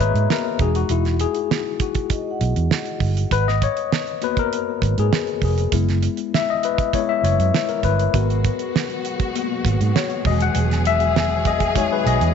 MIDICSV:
0, 0, Header, 1, 6, 480
1, 0, Start_track
1, 0, Key_signature, 5, "minor"
1, 0, Tempo, 603015
1, 720, Time_signature, 4, 2, 24, 8
1, 9823, End_track
2, 0, Start_track
2, 0, Title_t, "Vibraphone"
2, 0, Program_c, 0, 11
2, 0, Note_on_c, 0, 82, 64
2, 687, Note_off_c, 0, 82, 0
2, 1677, Note_on_c, 0, 75, 49
2, 1837, Note_on_c, 0, 78, 48
2, 2847, Note_off_c, 0, 75, 0
2, 2987, Note_off_c, 0, 78, 0
2, 9823, End_track
3, 0, Start_track
3, 0, Title_t, "Tine electric piano"
3, 0, Program_c, 1, 4
3, 0, Control_c, 1, 64, 127
3, 0, Note_on_c, 1, 58, 55
3, 0, Note_on_c, 1, 59, 47
3, 0, Note_on_c, 1, 66, 53
3, 0, Note_on_c, 1, 68, 97
3, 0, Note_on_c, 1, 71, 99
3, 0, Note_on_c, 1, 73, 88
3, 0, Note_on_c, 1, 75, 95
3, 0, Note_on_c, 1, 76, 78
3, 4, Note_off_c, 1, 71, 0
3, 4, Note_on_c, 1, 71, 89
3, 240, Note_off_c, 1, 58, 0
3, 240, Note_on_c, 1, 58, 45
3, 244, Note_off_c, 1, 59, 0
3, 244, Note_on_c, 1, 59, 44
3, 246, Note_off_c, 1, 66, 0
3, 246, Note_on_c, 1, 66, 51
3, 246, Note_on_c, 1, 70, 91
3, 249, Note_off_c, 1, 71, 0
3, 456, Note_off_c, 1, 58, 0
3, 458, Note_off_c, 1, 59, 0
3, 459, Note_off_c, 1, 66, 0
3, 482, Note_on_c, 1, 56, 50
3, 488, Note_on_c, 1, 63, 46
3, 489, Note_off_c, 1, 68, 0
3, 489, Note_on_c, 1, 68, 78
3, 490, Note_off_c, 1, 70, 0
3, 491, Control_c, 1, 64, 0
3, 493, Note_off_c, 1, 76, 0
3, 493, Note_on_c, 1, 66, 62
3, 494, Note_off_c, 1, 73, 0
3, 497, Note_off_c, 1, 75, 0
3, 595, Note_off_c, 1, 66, 0
3, 605, Note_on_c, 1, 66, 75
3, 608, Note_off_c, 1, 68, 0
3, 644, Control_c, 1, 64, 127
3, 723, Note_on_c, 1, 64, 89
3, 726, Note_off_c, 1, 66, 0
3, 831, Note_off_c, 1, 64, 0
3, 961, Note_on_c, 1, 68, 83
3, 1446, Note_on_c, 1, 66, 65
3, 1455, Note_off_c, 1, 68, 0
3, 1892, Note_off_c, 1, 66, 0
3, 2370, Note_off_c, 1, 56, 0
3, 2373, Note_off_c, 1, 63, 0
3, 2646, Note_on_c, 1, 71, 102
3, 2652, Control_c, 1, 64, 0
3, 2767, Note_off_c, 1, 71, 0
3, 2770, Note_on_c, 1, 75, 98
3, 2800, Control_c, 1, 64, 127
3, 2889, Note_off_c, 1, 75, 0
3, 2893, Note_on_c, 1, 73, 103
3, 3355, Note_on_c, 1, 58, 53
3, 3363, Note_on_c, 1, 59, 46
3, 3365, Note_on_c, 1, 66, 55
3, 3375, Note_on_c, 1, 71, 88
3, 3382, Note_off_c, 1, 73, 0
3, 3492, Note_off_c, 1, 71, 0
3, 3496, Note_on_c, 1, 70, 92
3, 3976, Note_on_c, 1, 68, 90
3, 3983, Note_off_c, 1, 70, 0
3, 4047, Note_off_c, 1, 58, 0
3, 4051, Note_off_c, 1, 59, 0
3, 4052, Note_off_c, 1, 66, 0
3, 4323, Note_off_c, 1, 68, 0
3, 4333, Note_on_c, 1, 68, 66
3, 4551, Note_off_c, 1, 68, 0
3, 4552, Note_on_c, 1, 56, 58
3, 4558, Note_on_c, 1, 59, 53
3, 4564, Note_on_c, 1, 64, 67
3, 4574, Control_c, 1, 64, 0
3, 4727, Control_c, 1, 64, 127
3, 5053, Note_on_c, 1, 76, 96
3, 5170, Note_off_c, 1, 76, 0
3, 5175, Note_on_c, 1, 75, 92
3, 5226, Note_off_c, 1, 75, 0
3, 5245, Note_off_c, 1, 56, 0
3, 5248, Note_off_c, 1, 59, 0
3, 5251, Note_off_c, 1, 64, 0
3, 5292, Note_on_c, 1, 71, 80
3, 5520, Note_on_c, 1, 56, 49
3, 5522, Note_on_c, 1, 59, 43
3, 5526, Note_on_c, 1, 64, 58
3, 5529, Note_on_c, 1, 73, 90
3, 5534, Note_off_c, 1, 71, 0
3, 5643, Note_on_c, 1, 76, 94
3, 5649, Note_off_c, 1, 73, 0
3, 5737, Note_off_c, 1, 56, 0
3, 5738, Note_off_c, 1, 59, 0
3, 5740, Note_off_c, 1, 64, 0
3, 5765, Note_on_c, 1, 73, 93
3, 5766, Note_off_c, 1, 76, 0
3, 6098, Note_off_c, 1, 73, 0
3, 6123, Note_on_c, 1, 70, 70
3, 6245, Note_on_c, 1, 71, 75
3, 6246, Note_off_c, 1, 70, 0
3, 6478, Note_on_c, 1, 70, 54
3, 6481, Note_on_c, 1, 59, 50
3, 6488, Note_on_c, 1, 66, 62
3, 6491, Control_c, 1, 64, 0
3, 6627, Control_c, 1, 64, 127
3, 6691, Note_off_c, 1, 71, 0
3, 7168, Note_off_c, 1, 70, 0
3, 7169, Note_off_c, 1, 59, 0
3, 7173, Note_off_c, 1, 66, 0
3, 7439, Note_on_c, 1, 58, 51
3, 7440, Note_on_c, 1, 59, 48
3, 7446, Note_on_c, 1, 66, 54
3, 7656, Note_off_c, 1, 58, 0
3, 7656, Note_off_c, 1, 59, 0
3, 7660, Note_off_c, 1, 66, 0
3, 7926, Note_on_c, 1, 73, 95
3, 8158, Note_on_c, 1, 56, 53
3, 8164, Note_on_c, 1, 51, 50
3, 8169, Note_on_c, 1, 66, 62
3, 8170, Note_off_c, 1, 73, 0
3, 8171, Control_c, 1, 64, 0
3, 8173, Note_on_c, 1, 75, 87
3, 8290, Note_off_c, 1, 75, 0
3, 8296, Note_on_c, 1, 78, 102
3, 8320, Control_c, 1, 64, 127
3, 8624, Note_off_c, 1, 78, 0
3, 8652, Note_on_c, 1, 76, 102
3, 8847, Note_off_c, 1, 56, 0
3, 8850, Note_off_c, 1, 51, 0
3, 8853, Note_off_c, 1, 66, 0
3, 9133, Note_on_c, 1, 75, 89
3, 9140, Note_off_c, 1, 76, 0
3, 9355, Note_on_c, 1, 56, 54
3, 9358, Note_on_c, 1, 63, 45
3, 9360, Note_on_c, 1, 66, 55
3, 9371, Note_on_c, 1, 73, 92
3, 9373, Note_off_c, 1, 75, 0
3, 9488, Note_off_c, 1, 73, 0
3, 9491, Note_on_c, 1, 71, 79
3, 9573, Note_off_c, 1, 56, 0
3, 9575, Note_off_c, 1, 63, 0
3, 9576, Note_off_c, 1, 66, 0
3, 9609, Note_off_c, 1, 71, 0
3, 9609, Note_on_c, 1, 75, 89
3, 9823, Note_off_c, 1, 75, 0
3, 9823, End_track
4, 0, Start_track
4, 0, Title_t, "String section"
4, 0, Program_c, 2, 48
4, 6484, Note_on_c, 2, 47, 68
4, 6485, Note_on_c, 2, 66, 75
4, 6487, Note_on_c, 2, 56, 68
4, 6489, Note_on_c, 2, 54, 71
4, 8146, Note_off_c, 2, 66, 0
4, 8164, Note_on_c, 2, 68, 88
4, 9823, Note_off_c, 2, 47, 0
4, 9823, Note_off_c, 2, 54, 0
4, 9823, Note_off_c, 2, 56, 0
4, 9823, Note_off_c, 2, 68, 0
4, 9823, End_track
5, 0, Start_track
5, 0, Title_t, "Fingered electric bass"
5, 0, Program_c, 3, 33
5, 0, Note_on_c, 3, 32, 73
5, 86, Note_off_c, 3, 32, 0
5, 113, Note_on_c, 3, 44, 88
5, 206, Note_off_c, 3, 44, 0
5, 472, Note_on_c, 3, 28, 88
5, 655, Note_off_c, 3, 28, 0
5, 713, Note_on_c, 3, 28, 89
5, 986, Note_off_c, 3, 28, 0
5, 1918, Note_on_c, 3, 35, 80
5, 2009, Note_off_c, 3, 35, 0
5, 2041, Note_on_c, 3, 40, 81
5, 2131, Note_off_c, 3, 40, 0
5, 2393, Note_on_c, 3, 31, 77
5, 2576, Note_off_c, 3, 31, 0
5, 2638, Note_on_c, 3, 32, 90
5, 2910, Note_off_c, 3, 32, 0
5, 3837, Note_on_c, 3, 32, 83
5, 3929, Note_off_c, 3, 32, 0
5, 3963, Note_on_c, 3, 44, 92
5, 4053, Note_off_c, 3, 44, 0
5, 4314, Note_on_c, 3, 29, 77
5, 4497, Note_off_c, 3, 29, 0
5, 4555, Note_on_c, 3, 30, 96
5, 4828, Note_off_c, 3, 30, 0
5, 5758, Note_on_c, 3, 30, 78
5, 5849, Note_off_c, 3, 30, 0
5, 5879, Note_on_c, 3, 42, 87
5, 5970, Note_off_c, 3, 42, 0
5, 6235, Note_on_c, 3, 31, 77
5, 6418, Note_off_c, 3, 31, 0
5, 6482, Note_on_c, 3, 32, 99
5, 6752, Note_off_c, 3, 32, 0
5, 7679, Note_on_c, 3, 32, 76
5, 7770, Note_off_c, 3, 32, 0
5, 7803, Note_on_c, 3, 44, 97
5, 7893, Note_off_c, 3, 44, 0
5, 8159, Note_on_c, 3, 28, 89
5, 8340, Note_off_c, 3, 28, 0
5, 8401, Note_on_c, 3, 28, 96
5, 9448, Note_off_c, 3, 28, 0
5, 9601, Note_on_c, 3, 35, 79
5, 9690, Note_off_c, 3, 35, 0
5, 9717, Note_on_c, 3, 40, 103
5, 9808, Note_off_c, 3, 40, 0
5, 9823, End_track
6, 0, Start_track
6, 0, Title_t, "Drums"
6, 4, Note_on_c, 9, 42, 73
6, 83, Note_off_c, 9, 42, 0
6, 124, Note_on_c, 9, 42, 48
6, 203, Note_off_c, 9, 42, 0
6, 241, Note_on_c, 9, 38, 101
6, 321, Note_off_c, 9, 38, 0
6, 471, Note_on_c, 9, 42, 60
6, 472, Note_on_c, 9, 36, 102
6, 550, Note_off_c, 9, 42, 0
6, 552, Note_off_c, 9, 36, 0
6, 597, Note_on_c, 9, 42, 53
6, 677, Note_off_c, 9, 42, 0
6, 709, Note_on_c, 9, 42, 91
6, 789, Note_off_c, 9, 42, 0
6, 837, Note_on_c, 9, 42, 33
6, 840, Note_on_c, 9, 38, 27
6, 917, Note_off_c, 9, 42, 0
6, 920, Note_off_c, 9, 38, 0
6, 951, Note_on_c, 9, 42, 75
6, 1031, Note_off_c, 9, 42, 0
6, 1071, Note_on_c, 9, 42, 41
6, 1150, Note_off_c, 9, 42, 0
6, 1203, Note_on_c, 9, 38, 98
6, 1283, Note_off_c, 9, 38, 0
6, 1430, Note_on_c, 9, 42, 69
6, 1432, Note_on_c, 9, 36, 89
6, 1510, Note_off_c, 9, 42, 0
6, 1511, Note_off_c, 9, 36, 0
6, 1549, Note_on_c, 9, 42, 50
6, 1553, Note_on_c, 9, 36, 86
6, 1628, Note_off_c, 9, 42, 0
6, 1633, Note_off_c, 9, 36, 0
6, 1670, Note_on_c, 9, 42, 85
6, 1672, Note_on_c, 9, 36, 88
6, 1750, Note_off_c, 9, 42, 0
6, 1752, Note_off_c, 9, 36, 0
6, 1917, Note_on_c, 9, 42, 75
6, 1997, Note_off_c, 9, 42, 0
6, 2040, Note_on_c, 9, 42, 49
6, 2119, Note_off_c, 9, 42, 0
6, 2158, Note_on_c, 9, 38, 101
6, 2238, Note_off_c, 9, 38, 0
6, 2273, Note_on_c, 9, 42, 35
6, 2353, Note_off_c, 9, 42, 0
6, 2391, Note_on_c, 9, 36, 78
6, 2395, Note_on_c, 9, 46, 43
6, 2470, Note_off_c, 9, 36, 0
6, 2474, Note_off_c, 9, 46, 0
6, 2522, Note_on_c, 9, 42, 51
6, 2602, Note_off_c, 9, 42, 0
6, 2637, Note_on_c, 9, 36, 100
6, 2640, Note_on_c, 9, 42, 87
6, 2716, Note_off_c, 9, 36, 0
6, 2720, Note_off_c, 9, 42, 0
6, 2772, Note_on_c, 9, 38, 29
6, 2852, Note_off_c, 9, 38, 0
6, 2880, Note_on_c, 9, 36, 95
6, 2882, Note_on_c, 9, 42, 72
6, 2960, Note_off_c, 9, 36, 0
6, 2962, Note_off_c, 9, 42, 0
6, 2998, Note_on_c, 9, 42, 43
6, 3078, Note_off_c, 9, 42, 0
6, 3124, Note_on_c, 9, 38, 95
6, 3204, Note_off_c, 9, 38, 0
6, 3237, Note_on_c, 9, 42, 30
6, 3317, Note_off_c, 9, 42, 0
6, 3357, Note_on_c, 9, 42, 70
6, 3436, Note_off_c, 9, 42, 0
6, 3477, Note_on_c, 9, 36, 88
6, 3480, Note_on_c, 9, 42, 47
6, 3557, Note_off_c, 9, 36, 0
6, 3559, Note_off_c, 9, 42, 0
6, 3603, Note_on_c, 9, 42, 88
6, 3683, Note_off_c, 9, 42, 0
6, 3836, Note_on_c, 9, 36, 86
6, 3846, Note_on_c, 9, 42, 77
6, 3915, Note_off_c, 9, 36, 0
6, 3926, Note_off_c, 9, 42, 0
6, 3963, Note_on_c, 9, 42, 50
6, 4043, Note_off_c, 9, 42, 0
6, 4081, Note_on_c, 9, 38, 107
6, 4160, Note_off_c, 9, 38, 0
6, 4196, Note_on_c, 9, 42, 32
6, 4276, Note_off_c, 9, 42, 0
6, 4312, Note_on_c, 9, 36, 79
6, 4313, Note_on_c, 9, 46, 42
6, 4391, Note_off_c, 9, 36, 0
6, 4393, Note_off_c, 9, 46, 0
6, 4440, Note_on_c, 9, 42, 52
6, 4519, Note_off_c, 9, 42, 0
6, 4554, Note_on_c, 9, 42, 96
6, 4555, Note_on_c, 9, 36, 104
6, 4633, Note_off_c, 9, 42, 0
6, 4634, Note_off_c, 9, 36, 0
6, 4685, Note_on_c, 9, 42, 33
6, 4689, Note_on_c, 9, 38, 28
6, 4765, Note_off_c, 9, 42, 0
6, 4768, Note_off_c, 9, 38, 0
6, 4796, Note_on_c, 9, 42, 72
6, 4876, Note_off_c, 9, 42, 0
6, 4914, Note_on_c, 9, 42, 43
6, 4993, Note_off_c, 9, 42, 0
6, 5050, Note_on_c, 9, 38, 101
6, 5129, Note_off_c, 9, 38, 0
6, 5280, Note_on_c, 9, 42, 70
6, 5359, Note_off_c, 9, 42, 0
6, 5400, Note_on_c, 9, 36, 89
6, 5400, Note_on_c, 9, 42, 52
6, 5479, Note_off_c, 9, 36, 0
6, 5480, Note_off_c, 9, 42, 0
6, 5519, Note_on_c, 9, 36, 84
6, 5523, Note_on_c, 9, 42, 84
6, 5599, Note_off_c, 9, 36, 0
6, 5602, Note_off_c, 9, 42, 0
6, 5768, Note_on_c, 9, 42, 76
6, 5848, Note_off_c, 9, 42, 0
6, 5889, Note_on_c, 9, 42, 50
6, 5968, Note_off_c, 9, 42, 0
6, 6005, Note_on_c, 9, 38, 104
6, 6085, Note_off_c, 9, 38, 0
6, 6119, Note_on_c, 9, 42, 34
6, 6198, Note_off_c, 9, 42, 0
6, 6235, Note_on_c, 9, 36, 76
6, 6237, Note_on_c, 9, 42, 59
6, 6314, Note_off_c, 9, 36, 0
6, 6317, Note_off_c, 9, 42, 0
6, 6364, Note_on_c, 9, 42, 52
6, 6443, Note_off_c, 9, 42, 0
6, 6479, Note_on_c, 9, 36, 108
6, 6482, Note_on_c, 9, 42, 87
6, 6559, Note_off_c, 9, 36, 0
6, 6561, Note_off_c, 9, 42, 0
6, 6609, Note_on_c, 9, 42, 33
6, 6688, Note_off_c, 9, 42, 0
6, 6722, Note_on_c, 9, 42, 70
6, 6723, Note_on_c, 9, 36, 85
6, 6801, Note_off_c, 9, 42, 0
6, 6802, Note_off_c, 9, 36, 0
6, 6839, Note_on_c, 9, 42, 45
6, 6919, Note_off_c, 9, 42, 0
6, 6970, Note_on_c, 9, 38, 104
6, 7050, Note_off_c, 9, 38, 0
6, 7082, Note_on_c, 9, 42, 33
6, 7161, Note_off_c, 9, 42, 0
6, 7202, Note_on_c, 9, 42, 69
6, 7281, Note_off_c, 9, 42, 0
6, 7321, Note_on_c, 9, 36, 87
6, 7322, Note_on_c, 9, 42, 48
6, 7400, Note_off_c, 9, 36, 0
6, 7401, Note_off_c, 9, 42, 0
6, 7447, Note_on_c, 9, 42, 87
6, 7526, Note_off_c, 9, 42, 0
6, 7678, Note_on_c, 9, 36, 89
6, 7687, Note_on_c, 9, 42, 76
6, 7758, Note_off_c, 9, 36, 0
6, 7767, Note_off_c, 9, 42, 0
6, 7807, Note_on_c, 9, 42, 52
6, 7886, Note_off_c, 9, 42, 0
6, 7926, Note_on_c, 9, 38, 99
6, 8006, Note_off_c, 9, 38, 0
6, 8037, Note_on_c, 9, 42, 32
6, 8117, Note_off_c, 9, 42, 0
6, 8157, Note_on_c, 9, 46, 42
6, 8159, Note_on_c, 9, 36, 96
6, 8237, Note_off_c, 9, 46, 0
6, 8238, Note_off_c, 9, 36, 0
6, 8282, Note_on_c, 9, 42, 54
6, 8362, Note_off_c, 9, 42, 0
6, 8395, Note_on_c, 9, 42, 92
6, 8475, Note_off_c, 9, 42, 0
6, 8528, Note_on_c, 9, 42, 35
6, 8531, Note_on_c, 9, 38, 30
6, 8607, Note_off_c, 9, 42, 0
6, 8611, Note_off_c, 9, 38, 0
6, 8640, Note_on_c, 9, 42, 74
6, 8719, Note_off_c, 9, 42, 0
6, 8757, Note_on_c, 9, 42, 42
6, 8836, Note_off_c, 9, 42, 0
6, 8886, Note_on_c, 9, 38, 102
6, 8966, Note_off_c, 9, 38, 0
6, 9115, Note_on_c, 9, 42, 72
6, 9116, Note_on_c, 9, 36, 88
6, 9194, Note_off_c, 9, 42, 0
6, 9196, Note_off_c, 9, 36, 0
6, 9236, Note_on_c, 9, 42, 52
6, 9237, Note_on_c, 9, 36, 87
6, 9316, Note_off_c, 9, 36, 0
6, 9316, Note_off_c, 9, 42, 0
6, 9357, Note_on_c, 9, 36, 92
6, 9360, Note_on_c, 9, 42, 87
6, 9437, Note_off_c, 9, 36, 0
6, 9440, Note_off_c, 9, 42, 0
6, 9605, Note_on_c, 9, 42, 78
6, 9685, Note_off_c, 9, 42, 0
6, 9722, Note_on_c, 9, 42, 52
6, 9801, Note_off_c, 9, 42, 0
6, 9823, End_track
0, 0, End_of_file